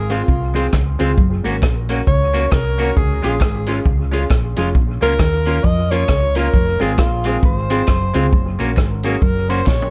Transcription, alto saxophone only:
0, 0, Header, 1, 2, 480
1, 0, Start_track
1, 0, Tempo, 447094
1, 1266, Time_signature, 4, 2, 24, 8
1, 10631, End_track
2, 0, Start_track
2, 0, Title_t, "Alto saxophone"
2, 0, Program_c, 0, 65
2, 0, Note_on_c, 0, 68, 101
2, 116, Note_on_c, 0, 65, 89
2, 132, Note_off_c, 0, 68, 0
2, 594, Note_off_c, 0, 65, 0
2, 2228, Note_on_c, 0, 73, 109
2, 2701, Note_on_c, 0, 70, 93
2, 2717, Note_off_c, 0, 73, 0
2, 3180, Note_off_c, 0, 70, 0
2, 3186, Note_on_c, 0, 68, 91
2, 3452, Note_off_c, 0, 68, 0
2, 3476, Note_on_c, 0, 68, 90
2, 4103, Note_off_c, 0, 68, 0
2, 5394, Note_on_c, 0, 70, 117
2, 6063, Note_on_c, 0, 75, 116
2, 6079, Note_off_c, 0, 70, 0
2, 6343, Note_on_c, 0, 73, 121
2, 6359, Note_off_c, 0, 75, 0
2, 6826, Note_on_c, 0, 70, 114
2, 6842, Note_off_c, 0, 73, 0
2, 7320, Note_on_c, 0, 68, 105
2, 7336, Note_off_c, 0, 70, 0
2, 7503, Note_on_c, 0, 65, 92
2, 7519, Note_off_c, 0, 68, 0
2, 7799, Note_on_c, 0, 68, 96
2, 7815, Note_off_c, 0, 65, 0
2, 7987, Note_off_c, 0, 68, 0
2, 7999, Note_on_c, 0, 72, 103
2, 9195, Note_off_c, 0, 72, 0
2, 9707, Note_on_c, 0, 68, 89
2, 9907, Note_on_c, 0, 70, 100
2, 9923, Note_off_c, 0, 68, 0
2, 10192, Note_on_c, 0, 72, 113
2, 10208, Note_off_c, 0, 70, 0
2, 10384, Note_off_c, 0, 72, 0
2, 10392, Note_on_c, 0, 73, 94
2, 10631, Note_off_c, 0, 73, 0
2, 10631, End_track
0, 0, End_of_file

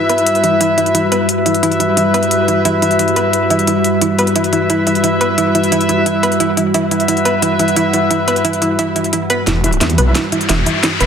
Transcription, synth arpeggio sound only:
0, 0, Header, 1, 2, 480
1, 0, Start_track
1, 0, Key_signature, 1, "minor"
1, 0, Tempo, 340909
1, 1815, Time_signature, 4, 2, 24, 8
1, 15577, End_track
2, 0, Start_track
2, 0, Title_t, "Synth arpeggio sound"
2, 0, Program_c, 0, 84
2, 134, Note_on_c, 0, 71, 93
2, 270, Note_off_c, 0, 71, 0
2, 614, Note_on_c, 0, 64, 77
2, 750, Note_off_c, 0, 64, 0
2, 854, Note_on_c, 0, 64, 96
2, 990, Note_off_c, 0, 64, 0
2, 1094, Note_on_c, 0, 64, 72
2, 1230, Note_off_c, 0, 64, 0
2, 1334, Note_on_c, 0, 64, 78
2, 1388, Note_off_c, 0, 64, 0
2, 1574, Note_on_c, 0, 71, 99
2, 1711, Note_off_c, 0, 71, 0
2, 2054, Note_on_c, 0, 64, 73
2, 2190, Note_off_c, 0, 64, 0
2, 2294, Note_on_c, 0, 64, 97
2, 2430, Note_off_c, 0, 64, 0
2, 2534, Note_on_c, 0, 64, 79
2, 2670, Note_off_c, 0, 64, 0
2, 2774, Note_on_c, 0, 64, 82
2, 2829, Note_off_c, 0, 64, 0
2, 3015, Note_on_c, 0, 71, 105
2, 3151, Note_off_c, 0, 71, 0
2, 3495, Note_on_c, 0, 64, 78
2, 3631, Note_off_c, 0, 64, 0
2, 3735, Note_on_c, 0, 64, 99
2, 3871, Note_off_c, 0, 64, 0
2, 3975, Note_on_c, 0, 64, 72
2, 4111, Note_off_c, 0, 64, 0
2, 4215, Note_on_c, 0, 64, 72
2, 4269, Note_off_c, 0, 64, 0
2, 4456, Note_on_c, 0, 71, 98
2, 4591, Note_off_c, 0, 71, 0
2, 4935, Note_on_c, 0, 64, 79
2, 5071, Note_off_c, 0, 64, 0
2, 5175, Note_on_c, 0, 64, 74
2, 5265, Note_off_c, 0, 64, 0
2, 5655, Note_on_c, 0, 64, 83
2, 5709, Note_off_c, 0, 64, 0
2, 5896, Note_on_c, 0, 71, 95
2, 6031, Note_off_c, 0, 71, 0
2, 6136, Note_on_c, 0, 64, 93
2, 6271, Note_off_c, 0, 64, 0
2, 6375, Note_on_c, 0, 64, 75
2, 6511, Note_off_c, 0, 64, 0
2, 6615, Note_on_c, 0, 64, 99
2, 6751, Note_off_c, 0, 64, 0
2, 6855, Note_on_c, 0, 64, 73
2, 6991, Note_off_c, 0, 64, 0
2, 7095, Note_on_c, 0, 64, 77
2, 7149, Note_off_c, 0, 64, 0
2, 7335, Note_on_c, 0, 71, 102
2, 7471, Note_off_c, 0, 71, 0
2, 7574, Note_on_c, 0, 64, 100
2, 7711, Note_off_c, 0, 64, 0
2, 7814, Note_on_c, 0, 64, 74
2, 7951, Note_off_c, 0, 64, 0
2, 8054, Note_on_c, 0, 64, 93
2, 8191, Note_off_c, 0, 64, 0
2, 8293, Note_on_c, 0, 64, 79
2, 8430, Note_off_c, 0, 64, 0
2, 8533, Note_on_c, 0, 64, 80
2, 8588, Note_off_c, 0, 64, 0
2, 8774, Note_on_c, 0, 71, 102
2, 8911, Note_off_c, 0, 71, 0
2, 9013, Note_on_c, 0, 64, 99
2, 9150, Note_off_c, 0, 64, 0
2, 9254, Note_on_c, 0, 64, 80
2, 9391, Note_off_c, 0, 64, 0
2, 9495, Note_on_c, 0, 64, 104
2, 9631, Note_off_c, 0, 64, 0
2, 9735, Note_on_c, 0, 64, 73
2, 9871, Note_off_c, 0, 64, 0
2, 9974, Note_on_c, 0, 64, 73
2, 10029, Note_off_c, 0, 64, 0
2, 10214, Note_on_c, 0, 71, 101
2, 10350, Note_off_c, 0, 71, 0
2, 10454, Note_on_c, 0, 64, 98
2, 10591, Note_off_c, 0, 64, 0
2, 10694, Note_on_c, 0, 64, 78
2, 10830, Note_off_c, 0, 64, 0
2, 10934, Note_on_c, 0, 64, 98
2, 11070, Note_off_c, 0, 64, 0
2, 11175, Note_on_c, 0, 64, 83
2, 11311, Note_off_c, 0, 64, 0
2, 11415, Note_on_c, 0, 64, 85
2, 11469, Note_off_c, 0, 64, 0
2, 11655, Note_on_c, 0, 71, 94
2, 11791, Note_off_c, 0, 71, 0
2, 11895, Note_on_c, 0, 64, 98
2, 12031, Note_off_c, 0, 64, 0
2, 12134, Note_on_c, 0, 64, 76
2, 12271, Note_off_c, 0, 64, 0
2, 12376, Note_on_c, 0, 64, 99
2, 12511, Note_off_c, 0, 64, 0
2, 12615, Note_on_c, 0, 64, 76
2, 12751, Note_off_c, 0, 64, 0
2, 12856, Note_on_c, 0, 64, 76
2, 12910, Note_off_c, 0, 64, 0
2, 13095, Note_on_c, 0, 71, 105
2, 13231, Note_off_c, 0, 71, 0
2, 13335, Note_on_c, 0, 64, 103
2, 13471, Note_off_c, 0, 64, 0
2, 13575, Note_on_c, 0, 64, 72
2, 13711, Note_off_c, 0, 64, 0
2, 13815, Note_on_c, 0, 64, 75
2, 13869, Note_off_c, 0, 64, 0
2, 14056, Note_on_c, 0, 71, 108
2, 14191, Note_off_c, 0, 71, 0
2, 14295, Note_on_c, 0, 64, 100
2, 14431, Note_off_c, 0, 64, 0
2, 14536, Note_on_c, 0, 64, 76
2, 14671, Note_off_c, 0, 64, 0
2, 14776, Note_on_c, 0, 64, 99
2, 14911, Note_off_c, 0, 64, 0
2, 15016, Note_on_c, 0, 64, 81
2, 15151, Note_off_c, 0, 64, 0
2, 15255, Note_on_c, 0, 64, 89
2, 15309, Note_off_c, 0, 64, 0
2, 15495, Note_on_c, 0, 71, 100
2, 15577, Note_off_c, 0, 71, 0
2, 15577, End_track
0, 0, End_of_file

